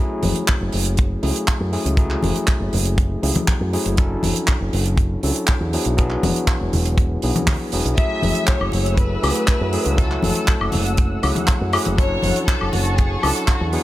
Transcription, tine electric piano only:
Already playing: F#3 A3
0.00 C#4 E4 G#4
1.23 F#3 A3 C#4 E4 G#4
1.72 F#3 A3 C#4 E4 G#4
1.97 F#3 A3 C#4 E4 G#4
3.22 F#3 A3 C#4 E4 G#4
3.73 F#3 A3 C#4 E4 G#4
3.97 F#3 C#4 D4 E4 A4
5.23 F#3 C#4 D4 E4 A4
5.73 F#3 B3 D4 E4 G#4
5.97 F#3 B3 D4 E4 G#4
7.23 F#3 B3 D4 E4 G#4
7.73 F#3 B3 D4 E4 G#4
7.97 F#3 A3 C#4 E4 G#4
9.22 F#3 A3 C#4 E4 G#4
9.73 F#3 A3 C#4 E4 G#4
9.97 F#3 A3 C#4 E4 A4
11.22 F#3 A3 C#4 E4 G#4
11.73 F#3 A3 C#4 E4 G#4
11.97 F#3 C#4 D4 E4 A4
13.22 F#3 C#4 D4 E4 A4
13.73 F#3 B3 D4 E4 G#4

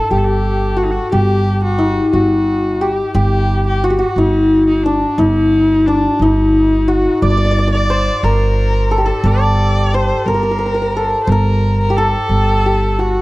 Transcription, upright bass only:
0.10 G1
1.13 G1
2.13 G1
3.15 G1
4.16 G1
5.18 G1
6.19 G1
7.22 G1
8.23 G1
9.24 G1
10.26 G1
11.27 G1
12.29 G1

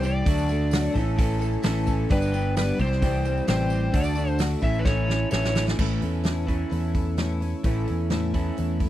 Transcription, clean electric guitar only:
Already playing: E3
0.02 G3 C4 G4
0.25 D3 A3 D4 F#4
0.49 A3 D4 F#4
0.94 A2 E3 A3 C#4 A4
1.16 A2 E3 A3 C#4 A4
1.39 A3 C#4 A4
1.62 E3 A3 C#4 A4
1.87 A3 C#4 A4
2.09 G2 D3 G3 B3 D4 G4
2.32 G3 B3 D4 G4
2.79 C3 E3 G3 C4 G4
3.01 C3 E3 G3 C4 G4
3.25 G3 C4 G4
3.47 E3 G3 C4 G4
3.71 G3 C4 G4
3.92 D3 A3 D4 F#4
4.15 A3 D4 F#4
4.62 A2 E3 A3 C#4 E4
4.85 A2 E3 A3 C#4 E4
5.08 A3 C#4 E4
5.32 E3 A3 C#4 E4
5.54 A3 C#4 E4
5.76 A2 E3 A3 C#4 E4
6.47 A2 E3 A3 C#4 E4
7.64 A2 E3 A3 C#4 E4
8.34 A2 E3 A3 C#4 E4

